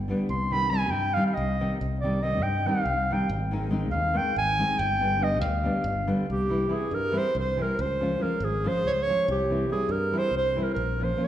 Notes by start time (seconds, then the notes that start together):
Already playing: G1
0.08 D3 G3 B3 D4
0.29 C2 C6
0.51 D#3 G3 C4 D#4 B5
0.71 D#3 G3 C4 D#4 G#5
0.91 G2 G5
1.14 D#3 G3 C4 D#4 F5
1.26 F5
1.34 C2 D#5
1.60 D#3 G3 C4 D#4
1.81 C2
2.01 D#3 G3 C4 D5
2.05 D#4
2.22 D#3 G3 C4 D#4 D#5
2.41 G2 G5
2.66 D#3 G3 C4 D#4 F5
2.85 C2
3.10 D#3 G3 C4 D#4 G5
3.29 G#1
3.51 D#3 G#3 C4 D#4
3.71 D#3 G#3 C4 D#4
3.91 D#2 F5
4.14 D#3 G#3 C4 D#4 G5
4.36 G#1 G#5
4.58 D#3 G#3 C4 D#4
4.79 G1 G5
5.01 D3 G3 B3 D4
5.20 D3 G3 B3 D4 D#5
5.41 D2 F5
5.64 D3 G3 B3 D4
5.84 G1
6.07 D3 G3 B3 D4
6.30 C2 G4
6.49 E3 G3 C4 E4
6.69 E3 G3 C4 E4 G#4
6.91 G2 A#4
7.12 E3 G3 C4 E4
7.18 C5
7.35 C2
7.39 C5
7.57 E3 G3 C4 E4
7.62 A#4
7.79 C#2 C5
8.00 F3 G#3 C#4 F4
8.20 F3 G#3 C#4 F4 A#4
8.40 G#1 G#4
8.64 F3 G#3 C#4 F4 C5
8.84 C#2 C#5
8.90 C5
9.03 C#5
9.08 F3 G#3 C#4 F4
9.28 C2 G4
9.50 E3 G3 C4 E4
9.69 E3 G3 C4 E4 G#4
9.89 G2 A#4
10.12 E3 G3 C4 E4
10.18 C5
10.31 C2
10.37 C5
10.56 E3 G3 C4 E4
10.63 A#4
10.74 A#1 A#4
11.00 F3 A#3 C#4 F4
11.04 C5
11.17 F3 A#3 C#4 F4
11.25 C#5